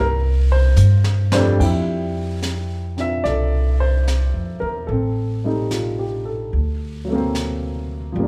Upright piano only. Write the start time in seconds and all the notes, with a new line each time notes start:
0.00 A#4
0.52 C5
1.33 F2 G3 A3 C4 D4 C5
1.59 F3 G3 C4 G5
1.63 E4 E5
2.97 C4 D4 F4 E5
3.24 A4 D5
3.80 C5
4.60 A#4
4.87 A4
4.92 C4
5.44 G3 A3 C4 D#4
5.71 F4
5.99 G4
6.25 A4
7.05 F#3 A3
7.12 A#3 C4
8.12 F3 G3
8.20 A#3 D4